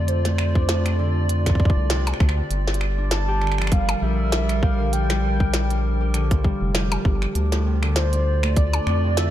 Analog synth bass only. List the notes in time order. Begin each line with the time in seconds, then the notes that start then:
Already playing: F2
1.77 C2
2.20 D2
2.51 G1
4.02 A#1
6.61 F1
7.05 G1
7.35 D2
8.87 F2